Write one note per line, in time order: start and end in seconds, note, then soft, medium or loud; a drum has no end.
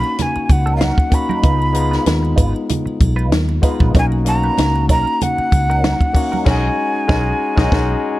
0.00 1.10 A#3 medium
0.00 1.12 C#4 medium
0.00 1.13 D#4 medium
0.00 1.14 F#4 medium
0.00 0.23 B5 loud
0.00 muted clean electric guitar stroke soft
0.00 muted triangle soft
0.18 0.46 G#5 medium
0.18 muted clean electric guitar stroke soft
0.18 snare soft
0.18 closed hi-hat medium
0.18 muted conga medium
0.18 low conga medium
0.18 muted triangle soft
0.36 muted clean electric guitar stroke soft
0.36 muted fingered electric bass stroke soft
0.36 muted triangle medium
0.46 0.91 C#2 medium
0.46 0.54 G#5 medium
0.46 kick medium
0.46 closed hi-hat medium
0.46 muted conga soft
0.51 0.76 F#5 medium
0.51 triangle medium
0.66 0.80 C#4 medium
0.66 0.81 D#4 medium
0.66 0.81 A#4 medium
0.66 muted triangle soft
0.77 0.85 F5 medium
0.81 0.96 C#4 medium
0.81 0.97 D#4 medium
0.81 0.97 A#4 medium
0.81 1.16 F#5 medium
0.81 snare loud
0.81 closed hi-hat medium
0.81 high conga medium
0.81 muted triangle soft
0.98 kick medium
0.98 muted triangle soft
1.10 1.38 A#3 medium
1.10 1.39 C#4 medium
1.10 1.39 D#4 medium
1.10 1.40 F#4 medium
1.10 2.39 B5 medium
1.10 muted clean electric guitar stroke soft
1.10 kick medium
1.10 closed hi-hat medium
1.10 triangle medium
1.29 1.40 C#4 soft
1.29 1.40 D#4 medium
1.29 1.40 A#4 medium
1.29 high conga medium
1.29 muted triangle soft
1.42 1.97 C#2 medium
1.42 1.70 G#3 medium
1.42 1.70 B3 medium
1.42 1.59 D#4 medium
1.42 1.71 D#4 medium
1.42 1.59 F4 medium
1.42 1.71 F4 medium
1.42 1.60 B4 medium
1.42 kick medium
1.42 closed hi-hat medium
1.42 muted conga soft
1.46 muted triangle soft
1.62 muted triangle soft
1.72 2.80 G#3 medium
1.72 2.80 B3 medium
1.72 2.81 D#4 medium
1.72 2.82 F4 medium
1.72 muted clean electric guitar stroke soft
1.72 closed hi-hat medium
1.77 triangle medium
1.91 2.03 D#4 soft
1.91 2.02 F4 soft
1.91 2.02 B4 soft
1.91 snare soft
1.91 muted triangle soft
2.05 2.33 D#2 medium
2.05 muted clean electric guitar stroke soft
2.05 snare loud
2.05 closed hi-hat medium
2.05 high conga medium
2.05 muted triangle soft
2.23 muted clean electric guitar stroke soft
2.23 muted triangle soft
2.36 2.52 G#1 medium
2.36 2.53 D#4 medium
2.36 2.53 F4 medium
2.36 2.53 B4 medium
2.36 kick medium
2.36 closed hi-hat medium
2.36 triangle medium
2.54 muted clean electric guitar stroke soft
2.54 muted triangle soft
2.69 muted clean electric guitar stroke soft
2.69 closed hi-hat medium
2.69 muted conga soft
2.69 low conga medium
2.69 muted triangle soft
2.86 muted clean electric guitar stroke soft
2.86 muted fingered electric bass stroke soft
2.86 muted triangle soft
3.00 3.32 B1 medium
3.00 kick medium
3.00 closed hi-hat medium
3.00 muted conga soft
3.00 triangle soft
3.16 3.30 D#4 medium
3.16 3.31 F4 medium
3.16 3.30 B4 medium
3.16 muted triangle soft
3.32 3.59 D#2 medium
3.32 muted clean electric guitar stroke soft
3.32 snare loud
3.32 closed hi-hat medium
3.32 high conga medium
3.32 muted triangle soft
3.49 muted clean electric guitar stroke soft
3.49 muted triangle soft
3.61 3.89 G#3 medium
3.61 3.90 B3 medium
3.61 3.76 D#4 medium
3.61 3.90 D#4 medium
3.61 3.76 F4 medium
3.61 3.91 F4 medium
3.61 3.76 B4 medium
3.61 kick medium
3.61 closed hi-hat medium
3.61 triangle medium
3.80 3.93 A#1 medium
3.80 3.91 D#4 soft
3.80 3.91 F4 medium
3.80 3.91 B4 medium
3.80 kick medium
3.80 high conga medium
3.80 muted triangle soft
3.92 4.49 B1 medium
3.92 4.21 A#3 medium
3.92 4.21 C#4 medium
3.92 4.11 C#4 medium
3.92 4.22 D#4 medium
3.92 4.11 D#4 medium
3.92 4.22 F#4 medium
3.92 4.11 A#4 medium
3.92 kick loud
3.92 closed hi-hat medium
3.92 muted conga soft
3.92 muted triangle soft
3.99 4.06 G#5 loud
4.12 muted triangle soft
4.25 5.32 A#3 medium
4.25 5.32 C#4 medium
4.25 5.33 D#4 medium
4.25 5.33 F#4 medium
4.25 4.86 A#5 loud
4.25 muted clean electric guitar stroke soft
4.25 closed hi-hat medium
4.25 muted conga soft
4.25 triangle medium
4.43 4.55 C#4 soft
4.43 4.54 D#4 soft
4.43 4.54 B4 soft
4.43 muted triangle soft
4.58 4.90 C#2 medium
4.58 muted clean electric guitar stroke soft
4.58 snare loud
4.58 closed hi-hat medium
4.58 high conga medium
4.58 muted triangle medium
4.76 muted clean electric guitar stroke soft
4.76 muted triangle soft
4.89 5.04 B1 medium
4.89 5.05 C#4 medium
4.89 5.06 D#4 medium
4.89 5.06 A#4 medium
4.89 5.24 A#5 loud
4.89 kick medium
4.89 closed hi-hat medium
4.89 triangle medium
5.07 muted triangle soft
5.21 6.52 F#5 loud
5.21 muted clean electric guitar stroke soft
5.21 closed hi-hat medium
5.21 muted conga medium
5.21 low conga medium
5.21 muted triangle soft
5.38 muted fingered electric bass stroke soft
5.38 muted clean electric guitar stroke soft
5.38 muted triangle soft
5.52 5.94 C#2 medium
5.52 kick medium
5.52 closed hi-hat medium
5.52 muted conga soft
5.52 triangle medium
5.70 5.83 C#4 medium
5.70 5.83 D#4 medium
5.70 5.83 A#4 medium
5.70 muted triangle medium
5.84 5.99 C#4 medium
5.84 6.00 D#4 medium
5.84 6.00 A#4 medium
5.84 snare loud
5.84 closed hi-hat medium
5.84 high conga medium
5.84 muted triangle soft
6.01 kick medium
6.01 muted triangle soft
6.13 6.41 A#3 medium
6.13 6.41 C#4 medium
6.13 6.42 D#4 medium
6.13 6.42 F#4 medium
6.13 muted clean electric guitar stroke soft
6.13 kick medium
6.13 open hi-hat soft
6.13 triangle medium
6.32 6.43 C#4 soft
6.32 6.43 D#4 soft
6.32 6.42 A#4 medium
6.32 high conga medium
6.32 muted triangle soft
6.44 6.68 B1 medium
6.44 6.67 G#3 medium
6.44 6.68 C#4 medium
6.44 6.68 D#4 medium
6.44 6.69 D#4 medium
6.44 6.69 F#4 medium
6.44 6.69 G#4 medium
6.44 kick loud
6.44 snare loud
6.44 crash medium
6.50 8.20 G#5 medium
7.08 7.31 B1 medium
7.08 7.30 G#3 medium
7.08 7.31 C#4 medium
7.08 7.31 D#4 medium
7.08 7.32 D#4 medium
7.08 7.32 F#4 medium
7.08 7.31 G#4 medium
7.08 kick loud
7.08 snare medium
7.56 7.70 B1 medium
7.56 7.69 G#3 medium
7.56 7.69 C#4 medium
7.56 7.70 C#4 medium
7.56 7.70 D#4 medium
7.56 7.71 F#4 medium
7.56 7.70 G#4 medium
7.56 kick loud
7.56 snare loud
7.71 7.94 B1 medium
7.71 7.93 G#3 medium
7.71 7.94 C#4 medium
7.71 7.94 D#4 medium
7.71 7.95 F#4 medium
7.71 7.95 G#4 medium
7.71 kick loud
7.71 snare loud